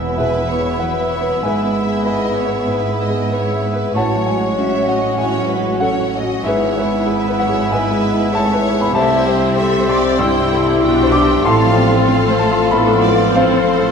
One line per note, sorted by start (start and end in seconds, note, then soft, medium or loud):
0.00 1.39 E1 soft
0.00 0.14 E2 soft
0.00 1.39 E2 soft
0.00 0.18 F#3 soft
0.00 0.38 B3 soft
0.00 3.91 B3 soft
0.00 3.91 E4 soft
0.00 0.19 G#4 soft
0.00 0.19 B4 soft
0.00 1.38 B4 soft
0.00 0.18 E5 soft
0.00 3.91 E5 soft
0.00 0.14 F#5 soft
0.00 1.43 G#5 soft
0.00 3.70 B5 soft
0.18 0.51 B2 soft
0.18 0.81 E3 soft
0.18 0.57 G#4 soft
0.18 0.47 B4 soft
0.18 0.77 B4 soft
0.18 0.77 E5 soft
0.38 0.72 B3 soft
0.49 0.81 C#5 soft
0.59 0.93 G#4 soft
0.79 1.44 F#3 soft
0.79 1.11 B4 soft
0.79 1.14 B4 soft
0.79 1.38 F#5 medium
1.01 1.35 E5 soft
1.09 1.42 C#5 soft
1.21 1.42 B4 soft
1.42 3.90 G#1 soft
1.42 2.65 G#2 soft
1.42 3.91 G#2 soft
1.42 2.04 G#3 soft
1.42 3.95 G#4 soft
1.42 1.73 B4 soft
1.42 2.02 B4 soft
1.42 2.02 E5 soft
1.42 2.01 G#5 medium
1.64 1.97 B3 soft
1.75 2.05 E5 soft
1.83 2.17 G#4 soft
2.04 2.99 B3 soft
2.04 2.38 B4 soft
2.04 2.36 D#5 soft
2.04 2.24 E5 soft
2.04 2.98 G#5 soft
2.04 2.97 B5 medium
2.26 2.60 E5 soft
2.36 2.68 C#5 soft
2.47 2.81 B4 soft
2.67 3.90 G#2 soft
2.67 3.01 B4 soft
2.88 3.23 B3 soft
3.02 3.33 D#5 soft
3.10 3.44 G#4 soft
3.31 3.65 B4 soft
3.31 3.64 C#5 soft
3.53 3.86 E5 soft
3.66 3.96 B4 soft
3.74 3.94 B4 soft
3.94 6.40 A1 soft
3.94 5.13 A2 medium
3.94 6.40 A2 soft
3.94 4.23 A3 medium
3.94 6.13 C#4 soft
3.94 6.40 C#4 soft
3.94 6.17 F#4 soft
3.94 6.40 F#4 soft
3.94 6.40 C#5 soft
3.94 6.13 C#5 medium
3.94 4.58 C#5 soft
3.94 4.25 C#5 soft
3.94 6.40 F#5 soft
3.94 4.25 F#5 soft
3.94 4.24 A5 medium
4.16 4.49 F#3 soft
4.26 4.87 G#3 medium
4.26 4.83 G#5 medium
4.38 4.69 F#4 soft
4.58 4.89 C#4 soft
4.58 4.88 E5 medium
4.78 5.10 C#5 soft
4.85 5.16 F#3 soft
4.85 5.18 D#5 soft
4.85 5.16 F#5 medium
4.98 5.30 F#4 soft
5.17 6.41 A2 soft
5.17 5.80 G#3 medium
5.17 5.47 C#5 medium
5.17 5.77 G#5 medium
5.38 5.72 F#3 soft
5.49 5.81 B4 soft
5.58 5.93 F#4 soft
5.80 6.44 F#3 soft
5.80 6.14 C#4 soft
5.80 6.41 A4 soft
5.80 5.99 C#5 soft
5.80 6.13 C#5 soft
5.80 6.40 F#5 medium
6.01 6.35 C#5 soft
6.15 6.45 D#5 medium
6.23 6.44 F#4 soft
6.43 8.90 G#1 soft
6.43 7.66 G#2 medium
6.43 8.90 G#2 medium
6.43 6.74 E3 medium
6.43 8.90 B3 medium
6.43 8.90 B3 soft
6.43 8.90 E4 soft
6.43 8.90 E4 medium
6.43 6.74 G#4 soft
6.43 6.75 B4 soft
6.43 7.07 C#5 soft
6.43 8.90 E5 medium
6.43 6.74 E5 medium
6.43 8.70 B5 medium
6.65 6.99 G#3 soft
6.76 7.38 E3 medium
6.76 7.05 G#4 soft
6.76 7.26 B4 soft
6.76 7.35 E5 medium
6.85 7.19 E4 soft
7.06 7.40 G#4 soft
7.06 7.39 B4 medium
7.28 7.61 B4 medium
7.39 7.70 F#3 medium
7.39 7.70 C#5 medium
7.39 7.68 F#5 medium
7.49 7.82 G#4 soft
7.70 8.91 G#2 medium
7.70 8.32 G#3 medium
7.70 8.32 B4 medium
7.70 8.29 B4 medium
7.70 8.29 E5 medium
7.70 8.29 G#5 medium
7.91 8.24 G#3 soft
8.12 8.45 E4 soft
8.32 8.80 A3 medium
8.32 8.65 G#4 soft
8.32 8.95 C#5 medium
8.32 8.77 A5 medium
8.53 8.86 B4 medium
8.74 8.94 G#4 soft
8.80 8.95 B3 medium
8.80 8.94 B5 medium
8.93 10.77 C2 medium
8.93 10.15 C2 medium
8.93 10.78 C3 medium
8.93 12.10 G3 medium
8.93 9.26 A3 medium
8.93 10.14 C4 medium
8.93 9.53 E4 medium
8.93 11.45 G4 medium
8.93 9.24 C5 medium
8.93 9.57 C5 medium
8.93 9.53 E5 medium
8.93 11.41 E5 medium
8.93 9.24 E5 medium
8.93 9.24 A5 medium
8.93 13.91 C6 medium
9.16 9.49 G3 medium
9.26 9.89 G3 medium
9.26 9.78 C5 soft
9.26 9.85 E5 soft
9.26 9.84 G5 medium
9.36 9.69 E4 soft
9.56 9.90 G4 medium
9.56 9.88 A4 medium
9.56 10.17 E5 medium
9.56 9.88 E5 medium
9.80 10.12 C5 medium
9.88 10.19 C4 medium
9.88 10.19 G4 medium
9.88 10.19 D5 medium
9.88 10.17 C6 medium
9.99 10.32 G4 medium
10.19 10.52 G2 soft
10.19 10.81 C4 medium
10.19 11.13 E4 medium
10.19 10.81 E4 medium
10.19 10.50 C5 medium
10.19 10.81 G5 medium
10.19 11.10 G5 medium
10.19 11.10 C6 medium
10.19 11.09 E6 medium
10.40 10.73 G3 soft
10.49 10.81 A4 medium
10.61 10.95 E4 soft
10.80 11.43 B1 medium
10.80 11.44 B2 medium
10.80 11.44 D4 medium
10.80 11.13 F#4 medium
10.80 11.45 G4 medium
10.80 11.16 G4 medium
10.80 11.44 G5 medium
11.03 11.36 C5 medium
11.12 11.45 D4 medium
11.12 11.44 G4 medium
11.12 11.42 D6 loud
11.23 11.45 G4 medium
11.43 13.91 A1 medium
11.43 13.91 A2 medium
11.43 12.69 A2 medium
11.43 11.76 C4 medium
11.43 12.70 F4 medium
11.43 13.91 A4 medium
11.43 13.32 A4 medium
11.43 12.06 F5 medium
11.43 13.91 F5 medium
11.43 12.37 F5 medium
11.43 12.37 A5 medium
11.43 12.36 C6 medium
11.47 12.22 C4 medium
11.65 12.00 F3 medium
11.76 12.08 B3 medium
11.87 12.21 F4 soft
12.07 13.91 F3 medium
12.07 12.72 A3 medium
12.07 12.42 C4 medium
12.07 12.70 F5 medium
12.30 12.64 C5 medium
12.39 12.71 A3 medium
12.39 12.69 A5 medium
12.51 12.85 F4 medium
12.71 13.91 A2 medium
12.71 13.36 B3 medium
12.71 13.04 D4 medium
12.71 13.04 A4 medium
12.71 13.91 C5 medium
12.71 13.31 B5 medium
12.94 13.28 F3 medium
13.04 13.91 C4 medium
13.04 13.36 D5 medium
13.15 13.49 F4 medium
13.35 13.91 F3 medium
13.35 13.70 C4 medium
13.35 13.66 A4 medium
13.35 13.91 A4 medium
13.35 13.55 C5 medium
13.35 13.91 C5 medium
13.35 13.91 F5 medium
13.57 13.90 C5 medium
13.67 13.91 A4 medium
13.78 13.91 F4 medium